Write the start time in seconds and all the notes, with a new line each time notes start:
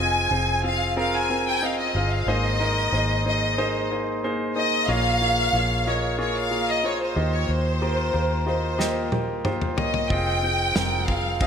Already playing: F1 G#4 G#5
0.00 C4 F4 D#5
0.31 F1 C4 F4 G#4 C5
0.64 C4 F4 G#4 F5
0.96 C4 F4 G#4 A#4 F5
1.16 G#5
1.30 C4 F4 G#4 A#4
1.48 G5 G#5
1.55 G5
1.62 C4 F4 G#4 D#5 F5
1.79 D#5
1.95 G1 C4 F4 G#4 F5
2.11 F5
2.26 G#1 G#2 A#3 D#4 G#4 C5 D#5
2.60 A#3 D#4 G#4 A#4
2.92 G#1 A#3 D#4 G#4 C5
3.25 A#3 D#4 G#4 C5 D#5
3.58 A#3 D#4 G#4 C5
3.91 A#3 D#4 G#4 C5
4.24 A#3 D#4 G#4 C5
4.56 A#3 D#4 G#4 C5 D#5
4.88 A#1 A#2 A#3 F4 G#4 C#5 F5
5.21 A#3 F4 G#4 C#5
5.53 A#1 A#3 F4 G#4 C#5
5.87 A#3 F4 G#4 C#5 D#5
6.18 A#3 F4 G#4 C#5
6.37 F5
6.51 A#3 F4 G#4 A#4
6.69 D#5
6.84 A#3 F4 G#4 C5 C#5
7.02 C5
7.16 D#2 D#3 A#3 F4 G4 D#5
7.34 C#5
7.49 D#2 C5
7.82 A#3 F4 G4 A#4
8.14 D#2 A#3 F4 G4 A#4
8.46 A#3 F4 G4 C5 D#5
8.79 A#3 F4 G4 D#5, snare
9.12 A#3 F4 G4 A#4, high tom
9.45 A#3 F4 G4 C5, mid tom
9.62 mid tom
9.77 A#3 F4 G4 C#5 D#5, floor tom
9.94 floor tom
10.10 F1 C4 F4 G#4 D#5 G5, kick
10.43 C4 F4 G#4 D#5
10.76 F1 C4 F4 G#4 A#4, snare
11.07 C4 F4 G#4 F5, kick
11.40 C4 F4 G#4 D#5 F5, kick